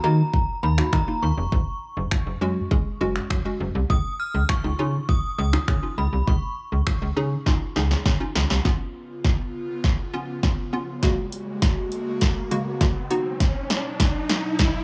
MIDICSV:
0, 0, Header, 1, 7, 480
1, 0, Start_track
1, 0, Tempo, 594059
1, 1231, Time_signature, 4, 2, 24, 8
1, 11989, End_track
2, 0, Start_track
2, 0, Title_t, "Synth bell"
2, 0, Program_c, 0, 98
2, 29, Note_on_c, 0, 82, 92
2, 509, Note_on_c, 0, 83, 85
2, 524, Note_off_c, 0, 82, 0
2, 749, Note_on_c, 0, 82, 92
2, 757, Note_off_c, 0, 83, 0
2, 989, Note_on_c, 0, 85, 90
2, 997, Note_off_c, 0, 82, 0
2, 2877, Note_off_c, 0, 85, 0
2, 3151, Note_on_c, 0, 87, 100
2, 3390, Note_on_c, 0, 89, 103
2, 3398, Note_off_c, 0, 87, 0
2, 3498, Note_off_c, 0, 89, 0
2, 3631, Note_on_c, 0, 85, 99
2, 4110, Note_on_c, 0, 87, 97
2, 4125, Note_off_c, 0, 85, 0
2, 4341, Note_off_c, 0, 87, 0
2, 4350, Note_on_c, 0, 87, 93
2, 4831, Note_on_c, 0, 83, 84
2, 4845, Note_off_c, 0, 87, 0
2, 5072, Note_on_c, 0, 85, 80
2, 5078, Note_off_c, 0, 83, 0
2, 5999, Note_off_c, 0, 85, 0
2, 11989, End_track
3, 0, Start_track
3, 0, Title_t, "Synth pluck"
3, 0, Program_c, 1, 84
3, 29, Note_on_c, 1, 58, 86
3, 30, Note_on_c, 1, 63, 77
3, 32, Note_on_c, 1, 66, 93
3, 463, Note_off_c, 1, 58, 0
3, 464, Note_off_c, 1, 63, 0
3, 465, Note_off_c, 1, 66, 0
3, 628, Note_on_c, 1, 58, 72
3, 630, Note_on_c, 1, 63, 65
3, 632, Note_on_c, 1, 66, 78
3, 803, Note_off_c, 1, 58, 0
3, 804, Note_off_c, 1, 63, 0
3, 805, Note_off_c, 1, 66, 0
3, 869, Note_on_c, 1, 58, 69
3, 871, Note_on_c, 1, 63, 64
3, 872, Note_on_c, 1, 65, 77
3, 1229, Note_off_c, 1, 58, 0
3, 1230, Note_off_c, 1, 63, 0
3, 1231, Note_off_c, 1, 65, 0
3, 1949, Note_on_c, 1, 56, 93
3, 1951, Note_on_c, 1, 61, 88
3, 1953, Note_on_c, 1, 66, 100
3, 2123, Note_off_c, 1, 56, 0
3, 2124, Note_off_c, 1, 61, 0
3, 2125, Note_off_c, 1, 66, 0
3, 2189, Note_on_c, 1, 56, 100
3, 2191, Note_on_c, 1, 61, 91
3, 2193, Note_on_c, 1, 68, 107
3, 2363, Note_off_c, 1, 56, 0
3, 2364, Note_off_c, 1, 61, 0
3, 2365, Note_off_c, 1, 68, 0
3, 2429, Note_on_c, 1, 56, 94
3, 2431, Note_on_c, 1, 61, 86
3, 2433, Note_on_c, 1, 66, 102
3, 2690, Note_off_c, 1, 56, 0
3, 2691, Note_off_c, 1, 61, 0
3, 2692, Note_off_c, 1, 66, 0
3, 2788, Note_on_c, 1, 56, 90
3, 2790, Note_on_c, 1, 61, 79
3, 2792, Note_on_c, 1, 66, 96
3, 3149, Note_off_c, 1, 56, 0
3, 3150, Note_off_c, 1, 61, 0
3, 3151, Note_off_c, 1, 66, 0
3, 3748, Note_on_c, 1, 61, 72
3, 3750, Note_on_c, 1, 63, 69
3, 3752, Note_on_c, 1, 65, 82
3, 3836, Note_off_c, 1, 61, 0
3, 3837, Note_off_c, 1, 63, 0
3, 3838, Note_off_c, 1, 65, 0
3, 3868, Note_on_c, 1, 61, 80
3, 3870, Note_on_c, 1, 63, 76
3, 3872, Note_on_c, 1, 65, 92
3, 4303, Note_off_c, 1, 61, 0
3, 4304, Note_off_c, 1, 63, 0
3, 4305, Note_off_c, 1, 65, 0
3, 4468, Note_on_c, 1, 61, 70
3, 4470, Note_on_c, 1, 63, 65
3, 4472, Note_on_c, 1, 65, 76
3, 4643, Note_off_c, 1, 61, 0
3, 4644, Note_off_c, 1, 63, 0
3, 4645, Note_off_c, 1, 65, 0
3, 4708, Note_on_c, 1, 61, 73
3, 4710, Note_on_c, 1, 63, 63
3, 4712, Note_on_c, 1, 65, 81
3, 5403, Note_off_c, 1, 61, 0
3, 5404, Note_off_c, 1, 63, 0
3, 5405, Note_off_c, 1, 65, 0
3, 5789, Note_on_c, 1, 61, 92
3, 5790, Note_on_c, 1, 63, 83
3, 5792, Note_on_c, 1, 68, 102
3, 5963, Note_off_c, 1, 61, 0
3, 5964, Note_off_c, 1, 63, 0
3, 5965, Note_off_c, 1, 68, 0
3, 6028, Note_on_c, 1, 61, 94
3, 6031, Note_on_c, 1, 63, 90
3, 6032, Note_on_c, 1, 65, 110
3, 6203, Note_off_c, 1, 61, 0
3, 6204, Note_off_c, 1, 63, 0
3, 6205, Note_off_c, 1, 65, 0
3, 6268, Note_on_c, 1, 61, 88
3, 6270, Note_on_c, 1, 63, 86
3, 6273, Note_on_c, 1, 68, 102
3, 6529, Note_off_c, 1, 61, 0
3, 6530, Note_off_c, 1, 63, 0
3, 6532, Note_off_c, 1, 68, 0
3, 6628, Note_on_c, 1, 61, 90
3, 6630, Note_on_c, 1, 63, 80
3, 6632, Note_on_c, 1, 65, 97
3, 6980, Note_off_c, 1, 61, 0
3, 6982, Note_off_c, 1, 65, 0
3, 6988, Note_on_c, 1, 59, 103
3, 6990, Note_off_c, 1, 63, 0
3, 6990, Note_on_c, 1, 61, 94
3, 6992, Note_on_c, 1, 65, 111
3, 7683, Note_off_c, 1, 59, 0
3, 7684, Note_off_c, 1, 61, 0
3, 7685, Note_off_c, 1, 65, 0
3, 8189, Note_on_c, 1, 59, 93
3, 8191, Note_on_c, 1, 61, 85
3, 8192, Note_on_c, 1, 65, 99
3, 8363, Note_off_c, 1, 59, 0
3, 8364, Note_off_c, 1, 61, 0
3, 8365, Note_off_c, 1, 65, 0
3, 8428, Note_on_c, 1, 59, 82
3, 8430, Note_on_c, 1, 61, 74
3, 8432, Note_on_c, 1, 65, 93
3, 8603, Note_off_c, 1, 59, 0
3, 8604, Note_off_c, 1, 61, 0
3, 8605, Note_off_c, 1, 65, 0
3, 8668, Note_on_c, 1, 59, 92
3, 8670, Note_on_c, 1, 61, 84
3, 8672, Note_on_c, 1, 65, 97
3, 8843, Note_off_c, 1, 59, 0
3, 8844, Note_off_c, 1, 61, 0
3, 8845, Note_off_c, 1, 65, 0
3, 8908, Note_on_c, 1, 49, 106
3, 8909, Note_on_c, 1, 56, 101
3, 8910, Note_on_c, 1, 58, 95
3, 8912, Note_on_c, 1, 66, 116
3, 9603, Note_off_c, 1, 49, 0
3, 9603, Note_off_c, 1, 56, 0
3, 9604, Note_off_c, 1, 58, 0
3, 9605, Note_off_c, 1, 66, 0
3, 10108, Note_on_c, 1, 49, 94
3, 10109, Note_on_c, 1, 56, 87
3, 10111, Note_on_c, 1, 58, 84
3, 10112, Note_on_c, 1, 66, 102
3, 10283, Note_off_c, 1, 49, 0
3, 10283, Note_off_c, 1, 56, 0
3, 10284, Note_off_c, 1, 58, 0
3, 10285, Note_off_c, 1, 66, 0
3, 10348, Note_on_c, 1, 49, 84
3, 10349, Note_on_c, 1, 56, 77
3, 10351, Note_on_c, 1, 58, 77
3, 10352, Note_on_c, 1, 66, 91
3, 10523, Note_off_c, 1, 49, 0
3, 10523, Note_off_c, 1, 56, 0
3, 10524, Note_off_c, 1, 58, 0
3, 10525, Note_off_c, 1, 66, 0
3, 10588, Note_on_c, 1, 59, 93
3, 10590, Note_on_c, 1, 63, 90
3, 10592, Note_on_c, 1, 66, 103
3, 11357, Note_off_c, 1, 59, 0
3, 11358, Note_off_c, 1, 63, 0
3, 11359, Note_off_c, 1, 66, 0
3, 11989, End_track
4, 0, Start_track
4, 0, Title_t, "Analog synth pad"
4, 0, Program_c, 2, 89
4, 6989, Note_on_c, 2, 49, 75
4, 6989, Note_on_c, 2, 59, 68
4, 6989, Note_on_c, 2, 65, 84
4, 8890, Note_off_c, 2, 59, 0
4, 8890, Note_off_c, 2, 65, 0
4, 8909, Note_on_c, 2, 58, 69
4, 8909, Note_on_c, 2, 66, 85
4, 8910, Note_on_c, 2, 56, 71
4, 10557, Note_off_c, 2, 49, 0
4, 10573, Note_off_c, 2, 56, 0
4, 10573, Note_off_c, 2, 58, 0
4, 10573, Note_off_c, 2, 66, 0
4, 10591, Note_on_c, 2, 47, 83
4, 10591, Note_on_c, 2, 54, 71
4, 10591, Note_on_c, 2, 63, 86
4, 11989, Note_off_c, 2, 47, 0
4, 11989, Note_off_c, 2, 54, 0
4, 11989, Note_off_c, 2, 63, 0
4, 11989, End_track
5, 0, Start_track
5, 0, Title_t, "FM bass"
5, 0, Program_c, 3, 39
5, 30, Note_on_c, 3, 51, 97
5, 180, Note_off_c, 3, 51, 0
5, 509, Note_on_c, 3, 39, 96
5, 659, Note_off_c, 3, 39, 0
5, 749, Note_on_c, 3, 51, 102
5, 824, Note_off_c, 3, 51, 0
5, 990, Note_on_c, 3, 39, 92
5, 1065, Note_off_c, 3, 39, 0
5, 1110, Note_on_c, 3, 29, 85
5, 1185, Note_off_c, 3, 29, 0
5, 1230, Note_on_c, 3, 30, 112
5, 1305, Note_off_c, 3, 30, 0
5, 1590, Note_on_c, 3, 30, 85
5, 1665, Note_off_c, 3, 30, 0
5, 1830, Note_on_c, 3, 30, 93
5, 1905, Note_off_c, 3, 30, 0
5, 1950, Note_on_c, 3, 42, 97
5, 2100, Note_off_c, 3, 42, 0
5, 2430, Note_on_c, 3, 30, 87
5, 2580, Note_off_c, 3, 30, 0
5, 2669, Note_on_c, 3, 42, 101
5, 2744, Note_off_c, 3, 42, 0
5, 2910, Note_on_c, 3, 30, 97
5, 2985, Note_off_c, 3, 30, 0
5, 3030, Note_on_c, 3, 36, 92
5, 3105, Note_off_c, 3, 36, 0
5, 3150, Note_on_c, 3, 37, 107
5, 3225, Note_off_c, 3, 37, 0
5, 3510, Note_on_c, 3, 37, 85
5, 3585, Note_off_c, 3, 37, 0
5, 3750, Note_on_c, 3, 37, 95
5, 3825, Note_off_c, 3, 37, 0
5, 3870, Note_on_c, 3, 49, 94
5, 4020, Note_off_c, 3, 49, 0
5, 4350, Note_on_c, 3, 37, 98
5, 4500, Note_off_c, 3, 37, 0
5, 4589, Note_on_c, 3, 49, 101
5, 4664, Note_off_c, 3, 49, 0
5, 4830, Note_on_c, 3, 37, 96
5, 4905, Note_off_c, 3, 37, 0
5, 4950, Note_on_c, 3, 36, 81
5, 5025, Note_off_c, 3, 36, 0
5, 5070, Note_on_c, 3, 37, 109
5, 5145, Note_off_c, 3, 37, 0
5, 5431, Note_on_c, 3, 37, 80
5, 5505, Note_off_c, 3, 37, 0
5, 5671, Note_on_c, 3, 37, 99
5, 5745, Note_off_c, 3, 37, 0
5, 5791, Note_on_c, 3, 49, 95
5, 5941, Note_off_c, 3, 49, 0
5, 6270, Note_on_c, 3, 37, 91
5, 6420, Note_off_c, 3, 37, 0
5, 6509, Note_on_c, 3, 49, 98
5, 6584, Note_off_c, 3, 49, 0
5, 6750, Note_on_c, 3, 37, 86
5, 6825, Note_off_c, 3, 37, 0
5, 6871, Note_on_c, 3, 36, 83
5, 6945, Note_off_c, 3, 36, 0
5, 11989, End_track
6, 0, Start_track
6, 0, Title_t, "Riser"
6, 0, Program_c, 4, 103
6, 6990, Note_on_c, 4, 60, 80
6, 11989, Note_off_c, 4, 60, 0
6, 11989, End_track
7, 0, Start_track
7, 0, Title_t, "Drums"
7, 271, Note_on_c, 9, 36, 110
7, 351, Note_off_c, 9, 36, 0
7, 630, Note_on_c, 9, 26, 69
7, 711, Note_off_c, 9, 26, 0
7, 749, Note_on_c, 9, 36, 118
7, 751, Note_on_c, 9, 26, 105
7, 830, Note_off_c, 9, 36, 0
7, 832, Note_off_c, 9, 26, 0
7, 1230, Note_on_c, 9, 36, 103
7, 1311, Note_off_c, 9, 36, 0
7, 1708, Note_on_c, 9, 26, 116
7, 1710, Note_on_c, 9, 36, 109
7, 1789, Note_off_c, 9, 26, 0
7, 1791, Note_off_c, 9, 36, 0
7, 2191, Note_on_c, 9, 36, 114
7, 2272, Note_off_c, 9, 36, 0
7, 2550, Note_on_c, 9, 26, 70
7, 2631, Note_off_c, 9, 26, 0
7, 2669, Note_on_c, 9, 36, 119
7, 2671, Note_on_c, 9, 26, 103
7, 2750, Note_off_c, 9, 36, 0
7, 2751, Note_off_c, 9, 26, 0
7, 3150, Note_on_c, 9, 36, 106
7, 3231, Note_off_c, 9, 36, 0
7, 3628, Note_on_c, 9, 26, 112
7, 3630, Note_on_c, 9, 36, 109
7, 3709, Note_off_c, 9, 26, 0
7, 3711, Note_off_c, 9, 36, 0
7, 4111, Note_on_c, 9, 36, 115
7, 4192, Note_off_c, 9, 36, 0
7, 4470, Note_on_c, 9, 26, 69
7, 4551, Note_off_c, 9, 26, 0
7, 4589, Note_on_c, 9, 36, 120
7, 4590, Note_on_c, 9, 26, 103
7, 4670, Note_off_c, 9, 36, 0
7, 4671, Note_off_c, 9, 26, 0
7, 5070, Note_on_c, 9, 36, 102
7, 5151, Note_off_c, 9, 36, 0
7, 5548, Note_on_c, 9, 26, 114
7, 5550, Note_on_c, 9, 36, 114
7, 5629, Note_off_c, 9, 26, 0
7, 5631, Note_off_c, 9, 36, 0
7, 6031, Note_on_c, 9, 36, 118
7, 6031, Note_on_c, 9, 38, 55
7, 6111, Note_off_c, 9, 38, 0
7, 6112, Note_off_c, 9, 36, 0
7, 6271, Note_on_c, 9, 38, 68
7, 6351, Note_off_c, 9, 38, 0
7, 6390, Note_on_c, 9, 38, 62
7, 6471, Note_off_c, 9, 38, 0
7, 6509, Note_on_c, 9, 36, 115
7, 6511, Note_on_c, 9, 38, 80
7, 6590, Note_off_c, 9, 36, 0
7, 6591, Note_off_c, 9, 38, 0
7, 6751, Note_on_c, 9, 38, 92
7, 6831, Note_off_c, 9, 38, 0
7, 6870, Note_on_c, 9, 38, 90
7, 6951, Note_off_c, 9, 38, 0
7, 6990, Note_on_c, 9, 36, 105
7, 6990, Note_on_c, 9, 38, 51
7, 7071, Note_off_c, 9, 36, 0
7, 7071, Note_off_c, 9, 38, 0
7, 7470, Note_on_c, 9, 36, 114
7, 7470, Note_on_c, 9, 38, 55
7, 7551, Note_off_c, 9, 36, 0
7, 7551, Note_off_c, 9, 38, 0
7, 7950, Note_on_c, 9, 38, 59
7, 7951, Note_on_c, 9, 36, 111
7, 8031, Note_off_c, 9, 36, 0
7, 8031, Note_off_c, 9, 38, 0
7, 8429, Note_on_c, 9, 36, 113
7, 8430, Note_on_c, 9, 38, 63
7, 8510, Note_off_c, 9, 36, 0
7, 8511, Note_off_c, 9, 38, 0
7, 8910, Note_on_c, 9, 36, 106
7, 8910, Note_on_c, 9, 38, 66
7, 8910, Note_on_c, 9, 42, 78
7, 8991, Note_off_c, 9, 36, 0
7, 8991, Note_off_c, 9, 38, 0
7, 8991, Note_off_c, 9, 42, 0
7, 9150, Note_on_c, 9, 42, 55
7, 9230, Note_off_c, 9, 42, 0
7, 9390, Note_on_c, 9, 36, 116
7, 9390, Note_on_c, 9, 38, 72
7, 9392, Note_on_c, 9, 42, 75
7, 9471, Note_off_c, 9, 36, 0
7, 9471, Note_off_c, 9, 38, 0
7, 9473, Note_off_c, 9, 42, 0
7, 9630, Note_on_c, 9, 42, 51
7, 9710, Note_off_c, 9, 42, 0
7, 9867, Note_on_c, 9, 42, 74
7, 9869, Note_on_c, 9, 38, 74
7, 9870, Note_on_c, 9, 36, 109
7, 9948, Note_off_c, 9, 42, 0
7, 9950, Note_off_c, 9, 38, 0
7, 9951, Note_off_c, 9, 36, 0
7, 10111, Note_on_c, 9, 42, 55
7, 10192, Note_off_c, 9, 42, 0
7, 10349, Note_on_c, 9, 36, 120
7, 10350, Note_on_c, 9, 38, 83
7, 10350, Note_on_c, 9, 42, 82
7, 10430, Note_off_c, 9, 36, 0
7, 10431, Note_off_c, 9, 38, 0
7, 10431, Note_off_c, 9, 42, 0
7, 10589, Note_on_c, 9, 42, 49
7, 10670, Note_off_c, 9, 42, 0
7, 10830, Note_on_c, 9, 36, 110
7, 10830, Note_on_c, 9, 38, 83
7, 10830, Note_on_c, 9, 42, 76
7, 10911, Note_off_c, 9, 36, 0
7, 10911, Note_off_c, 9, 38, 0
7, 10911, Note_off_c, 9, 42, 0
7, 11070, Note_on_c, 9, 38, 87
7, 11070, Note_on_c, 9, 42, 55
7, 11151, Note_off_c, 9, 38, 0
7, 11151, Note_off_c, 9, 42, 0
7, 11310, Note_on_c, 9, 36, 114
7, 11310, Note_on_c, 9, 38, 86
7, 11312, Note_on_c, 9, 42, 74
7, 11391, Note_off_c, 9, 36, 0
7, 11391, Note_off_c, 9, 38, 0
7, 11393, Note_off_c, 9, 42, 0
7, 11550, Note_on_c, 9, 38, 89
7, 11550, Note_on_c, 9, 42, 49
7, 11630, Note_off_c, 9, 42, 0
7, 11631, Note_off_c, 9, 38, 0
7, 11788, Note_on_c, 9, 42, 71
7, 11790, Note_on_c, 9, 38, 88
7, 11791, Note_on_c, 9, 36, 113
7, 11869, Note_off_c, 9, 42, 0
7, 11871, Note_off_c, 9, 36, 0
7, 11871, Note_off_c, 9, 38, 0
7, 11989, End_track
0, 0, End_of_file